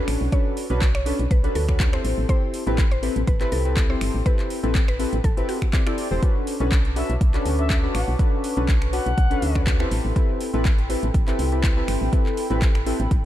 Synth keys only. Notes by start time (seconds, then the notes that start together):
Already playing: C#4 D4 F#4 A4 B4
0.32 C#4 D4 F#4 A4 B4
0.70 C#4 D4 F#4 A4 B4
1.06 C#4 D4 F#4 A4 B4
1.44 C#4 D4 F#4 A4 B4
1.68 C#4 D4 F#4 A4 B4
1.93 C4 E4 G4 A4 C5
2.29 C4 E4 G4 A4 C5
2.66 C4 E4 G4 A4 B4
3.02 C4 E4 G4 A4 B4
3.40 C4 E4 G4 A4 B4
3.65 C4 E4 G4 A4 B4
3.89 C4 E4 G4 A4 C5
4.25 C4 E4 G4 A4 B4
4.63 C4 E4 G4 A4 B4
4.99 C4 E4 G4 A4 B4
5.37 C4 E4 G4 A4 B4
5.73 C4 E4 G4 A4 D5
5.86 C4 E4 G4 A4 D5
6.11 C4 E4 G4 A4 C5
6.22 C#4 D4 F#4 A4 B4
6.60 C#4 D4 F#4 A4 B4
6.96 C#4 D4 F#4 A4 B4
7.34 C#4 D4 F#4 A4 B4
7.58 C#4 D4 F#4 A4 B4
7.83 C#4 D4 F#4 A4 B4
8.19 C#4 D4 F#4 A4 B4
8.57 C#4 D4 F#4 A4 B4
8.93 C#4 D4 F#4 A4 B4
9.30 C#4 D4 F#4 A4 B4
9.55 C#4 D4 F#4 A4 B4
9.80 C4 E4 G4 A4 B4
10.16 C4 E4 G4 A4 B4
10.53 C4 E4 G4 A4 B4
10.89 C4 E4 G4 A4 B4
11.27 C4 E4 G4 A4 B4
11.52 C4 E4 G4 A4 B4
11.76 C4 E4 G4 A4 B4
12.12 C4 E4 G4 A4 B4
12.50 C4 E4 G4 A4 B4
12.86 C4 E4 G4 A4 B4